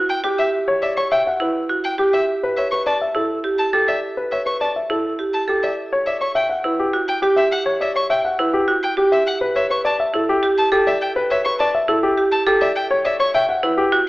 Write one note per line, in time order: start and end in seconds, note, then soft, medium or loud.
0.00 0.13 F#4 medium
0.09 0.20 G5 medium
0.24 0.42 G4 medium
0.24 0.43 G4 medium
0.38 0.49 E5 medium
0.38 0.57 E5 medium
0.68 0.86 C#5 medium
0.82 1.01 D5 medium
0.82 0.93 E5 medium
0.97 1.16 C#5 medium
0.97 1.07 C#6 medium
1.11 1.30 E5 medium
1.11 1.22 G5 medium
1.27 1.45 F#5 medium
1.40 1.59 E4 medium
1.40 1.59 B4 medium
1.69 1.88 F#4 medium
1.84 1.95 G5 medium
1.98 2.17 G4 medium
2.13 2.24 E5 medium
2.13 2.32 E5 medium
2.43 2.61 B4 medium
2.57 2.76 C#5 medium
2.57 2.68 E5 medium
2.71 2.91 B4 medium
2.71 2.82 C#6 soft
2.86 3.05 D5 medium
2.86 2.97 A5 medium
3.01 3.20 E5 medium
3.15 3.34 E4 medium
3.15 3.34 A4 medium
3.44 3.63 G4 medium
3.58 3.69 A5 medium
3.73 3.92 G4 medium
3.73 3.92 A4 medium
3.88 4.07 D5 soft
3.88 3.99 E5 medium
4.17 4.36 B4 medium
4.31 4.51 C#5 medium
4.31 4.42 E5 soft
4.46 4.65 B4 medium
4.46 4.57 C#6 soft
4.61 4.80 D5 medium
4.61 4.71 A5 medium
4.76 4.94 E5 soft
4.90 5.09 E4 medium
4.90 5.09 A4 medium
5.19 5.38 G4 medium
5.33 5.44 A5 medium
5.48 5.67 G4 medium
5.48 5.67 A4 medium
5.63 5.82 D5 medium
5.63 5.74 E5 soft
5.93 6.11 C#5 medium
6.06 6.25 D5 medium
6.06 6.17 E5 medium
6.21 6.40 C#5 medium
6.21 6.32 C#6 soft
6.35 6.54 E5 medium
6.35 6.46 G5 medium
6.50 6.69 F#5 soft
6.64 6.83 E4 medium
6.64 6.83 B4 medium
6.79 6.98 G4 medium
6.93 7.12 F#4 medium
7.08 7.19 G5 medium
7.22 7.41 G4 medium
7.22 7.42 G4 medium
7.36 7.56 E5 medium
7.36 7.48 E5 medium
7.51 7.62 F#5 medium
7.66 7.85 C#5 medium
7.81 8.00 D5 medium
7.81 7.92 E5 medium
7.96 8.14 C#5 medium
7.96 8.06 C#6 medium
8.10 8.29 E5 medium
8.10 8.21 G5 medium
8.25 8.43 F#5 medium
8.39 8.58 E4 medium
8.39 8.58 B4 medium
8.54 8.73 G4 medium
8.68 8.87 F#4 medium
8.83 8.94 G5 medium
8.97 9.16 G4 medium
9.12 9.31 E5 medium
9.12 9.23 E5 medium
9.27 9.37 F#5 medium
9.41 9.60 B4 medium
9.56 9.75 C#5 medium
9.56 9.67 E5 medium
9.70 9.89 B4 medium
9.70 9.81 C#6 soft
9.85 10.04 D5 medium
9.85 9.96 A5 medium
10.00 10.18 E5 medium
10.14 10.33 E4 medium
10.14 10.33 A4 medium
10.29 10.48 G4 medium
10.43 10.62 G4 medium
10.58 10.69 A5 medium
10.72 10.91 G4 medium
10.72 10.91 A4 medium
10.87 11.06 D5 medium
10.87 10.98 E5 medium
11.01 11.12 G5 medium
11.16 11.35 B4 medium
11.30 11.49 C#5 medium
11.30 11.41 E5 medium
11.45 11.64 B4 medium
11.45 11.56 C#6 medium
11.59 11.79 D5 medium
11.59 11.70 A5 medium
11.75 11.93 E5 medium
11.88 12.07 E4 medium
11.88 12.08 A4 medium
12.03 12.22 G4 medium
12.18 12.37 G4 medium
12.32 12.43 A5 medium
12.47 12.66 G4 medium
12.47 12.66 A4 medium
12.61 12.80 D5 medium
12.61 12.72 E5 medium
12.76 12.87 G5 medium
12.91 13.09 C#5 medium
13.05 13.24 D5 medium
13.05 13.16 E5 medium
13.20 13.39 C#5 medium
13.20 13.31 C#6 medium
13.34 13.53 E5 medium
13.34 13.45 G5 medium
13.49 13.68 F#5 medium
13.63 13.82 E4 medium
13.63 13.82 B4 medium
13.77 13.97 G4 medium
13.92 14.09 F#4 medium